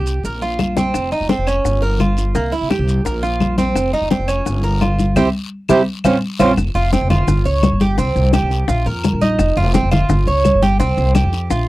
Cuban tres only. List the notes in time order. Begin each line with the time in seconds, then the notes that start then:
Already playing: G4
0.25 A#4
0.42 F4
0.77 C4
1.12 D#4
1.29 C4
1.47 C#4
1.82 A#4
2.00 F4
2.35 A#3
2.52 E4
2.70 G4
3.05 A#4
3.23 F4
3.58 C4
3.93 D#4
4.11 C4
4.28 C#4
4.64 A#4
4.81 F4
5.16 C4 E4 G4
5.69 C4 E4 G4
6.05 C4 C#4 F4
6.40 C4 C#4 F4
6.75 F4
6.93 C4
7.10 F4
7.46 C#5
7.81 G4
7.98 C4
8.34 G4
8.69 F4
8.86 A#4
9.22 D#4
9.57 F4
9.74 C4
9.91 F4
10.27 C#5
10.63 G4
10.80 C4
11.15 G4
11.51 F4